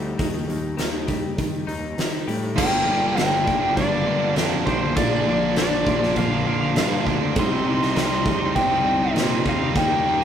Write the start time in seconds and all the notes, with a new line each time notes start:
Already playing: D2 G3 C4 D#4
0.18 D#2 D#3, kick, open hi-hat
0.49 D#2, open hi-hat
0.77 D#2 D#3, snare, open hi-hat
1.07 G3, kick, open hi-hat
1.38 D#3, kick, open hi-hat
1.67 D#2 D#4, open hi-hat
1.98 D#3, snare, open hi-hat
2.28 A2 G3, open hi-hat
2.56 G1 G2 D3 G3 A#3 D4 G5, kick, crash
2.71 G3 A#3 D4
2.85 G1 D3 G3 A#3 D4
3.14 G1 G2 D3 G3 A#3 D4 G5, crash
3.18 snare
3.29 G3 A#3 D4
3.44 G1 D3 G3 A#3 D4, muted distorted electric guitar stroke, kick
3.60 G3 A#3 D4
3.75 G1 G2 D3 G3 A#3 D4 D5, kick, crash
3.90 G3 A#3 D4
4.06 G1 D3 G3 A#3 D4
4.20 G3 A#3 D4
4.35 F2 G2 D3 G3 A#3 D4, snare, crash
4.49 G3 A#3 D4
4.65 A#1 D3 G3 A#3 D4 C5, kick
4.80 G3 A#3 D4
4.95 A#1 A#2 D3 F3 A#3 D4 D5, kick, crash
5.11 F3 A#3 D4
5.26 A#1 D3 F3 A#3 D4
5.56 A#1 A#2 D3 F3 A#3 D4 D5, snare, crash
5.69 F3 A#3 D4
5.85 A#1 D3 F3 A#3, muted distorted electric guitar stroke, kick
5.89 D4
6.00 F3 A#3 D4, snare
6.14 A#1 A#2 D3 F3 A#3 D4 F5, kick, crash
6.30 F3 A#3 D4
6.45 A#1 D3 F3 A#3 D4 F5
6.61 F3 A#3 D4
6.75 G2 A#2 D3 F3 A#3 D4, snare, crash
6.88 F3 A#3 D4
7.04 D2 D3 F3 A#3 D4, kick
7.21 F3 A#3 D4
7.36 C2 C3 G3 C4 D#4 C6, kick, crash
7.50 G3 C4 D#4
7.66 C2 C3 G3 C4 D#4
7.82 snare
7.95 C2 C3 G3 C4 D#4 C6, snare, crash
8.09 G3 C4 D#4
8.24 C2 C3 G3 C4, muted distorted electric guitar stroke, kick
8.29 D#4
8.41 G3 C4 D#4
8.54 C2 C3 G3 C4 D#4 G5, kick, crash
8.70 G3 C4 D#4
8.84 C2 C3 G3 C4 D#4
9.00 G3 C4 D#4
9.14 A#2 C3 G3, snare, crash
9.18 G3 C4 D#4
9.29 G3 C4 D#4
9.45 D#2 C3 G3 C4 D#4 F5, kick
9.61 G3 C4 D#4
9.74 D#2 D#3 G3 A#3 D#4 G5, kick, crash
9.90 G3 A#3 D#4
10.04 D#2 D#3 G3 A#3
10.09 D#4